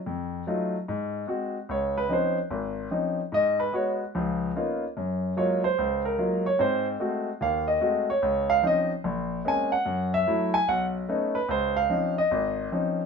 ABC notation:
X:1
M:4/4
L:1/8
Q:"Swing" 1/4=147
K:Abmix
V:1 name="Grand piano"
z8 | [K:Db] d _c =c z4 z | e _c d z4 z | z2 d c2 B2 d |
c z3 f e2 d- | d f e z3 a g- | g _f2 a g z2 _c | c f2 e3 z2 |]
V:2 name="Grand piano"
F,,2 [G,=A,EF] z _A,,2 [_A,CG] z | [K:Db] D,,2 [F,CDE] z A,,,2 [F,CDE] z | A,,2 [A,_CG] z [D,,F,]2 [B,CDEF] z | G,,2 [G,A,B,F] z D,,2 [G,A,B,F] z |
[A,,C]2 [A,=A,CG] z E,,2 [_A,=A,CG] z | D,,2 [F,CDE] z B,,,2 [A,B,CD] z | G,,2 [G,=A,_F] z _C,,2 [A,_CDE] z | D,,2 [F,CDE] z A,,,2 [F,CDE] z |]